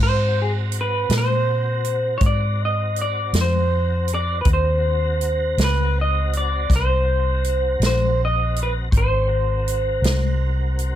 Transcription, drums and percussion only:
0.72 closed hi-hat
1.10 snare, closed hi-hat
1.85 closed hi-hat
2.21 kick, closed hi-hat
2.96 closed hi-hat
3.34 snare, closed hi-hat
4.08 closed hi-hat
4.45 kick, closed hi-hat
5.21 closed hi-hat
5.58 snare, closed hi-hat
6.33 closed hi-hat
6.70 kick, snare, closed hi-hat
7.44 closed hi-hat
7.82 snare, closed hi-hat
8.56 closed hi-hat
8.92 kick, closed hi-hat
9.68 closed hi-hat
10.04 snare, closed hi-hat
10.79 closed hi-hat

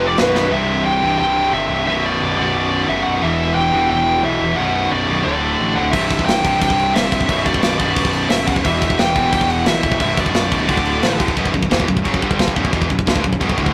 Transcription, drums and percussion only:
0.18 snare, china
0.35 snare
5.93 kick, crash
6.10 kick, crash
6.19 kick
6.28 snare, crash
6.45 kick, crash
6.62 kick, crash
6.70 kick
6.79 crash
6.96 snare, crash
7.12 kick, crash
7.21 kick
7.29 kick, crash
7.46 kick, crash
7.54 kick
7.63 snare, crash
7.80 kick, crash
7.96 kick, crash
8.05 kick
8.13 crash
8.30 snare, crash
8.47 kick, crash
8.56 kick
8.65 kick, crash
8.82 kick, crash
8.90 kick
8.99 snare, crash
9.16 kick, crash
9.33 kick, crash
9.41 kick
9.50 crash
9.66 snare, crash
9.83 kick, crash
9.92 kick
10.00 kick, crash
10.17 kick, crash
10.26 kick
10.34 snare, crash
10.52 kick, crash
10.69 kick, crash
10.77 kick
10.85 crash
11.03 snare, crash
11.20 kick, crash
11.28 kick
11.37 kick, china
11.46 kick
11.54 kick
11.63 kick
11.71 kick, snare, china
11.80 kick
11.88 kick
11.97 kick
12.05 kick, china
12.14 kick
12.22 kick
12.31 kick
12.39 kick, snare, china
12.48 kick
12.56 kick
12.65 kick
12.73 kick, china
12.82 kick
12.90 kick
12.99 kick
13.07 kick, snare, china
13.16 kick
13.24 kick
13.33 kick
13.41 kick, china
13.49 kick
13.58 kick
13.66 kick

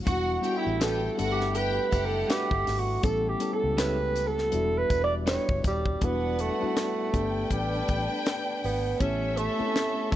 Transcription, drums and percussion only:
0.07 kick, closed hi-hat, tambourine
0.43 closed hi-hat, tambourine
0.81 snare, closed hi-hat, tambourine
1.19 closed hi-hat, tambourine
1.41 snare
1.55 closed hi-hat, tambourine
1.92 kick, closed hi-hat, tambourine
2.30 snare, closed hi-hat, tambourine
2.51 kick
2.67 snare, open hi-hat, tambourine
3.03 kick, closed hi-hat, tambourine
3.40 closed hi-hat, tambourine
3.78 snare, closed hi-hat, tambourine
4.15 closed hi-hat, tambourine
4.38 snare
4.52 closed hi-hat, tambourine
4.90 kick, closed hi-hat, tambourine
5.27 snare, closed hi-hat, tambourine
5.49 kick
5.64 kick, closed hi-hat, tambourine
5.86 kick
6.01 kick, closed hi-hat
6.39 closed hi-hat
6.77 snare, closed hi-hat
7.14 kick, closed hi-hat
7.50 kick, closed hi-hat
7.88 kick, closed hi-hat
8.26 snare, closed hi-hat
8.64 open hi-hat
9.00 kick, closed hi-hat
9.37 closed hi-hat
9.76 snare, closed hi-hat
10.12 kick

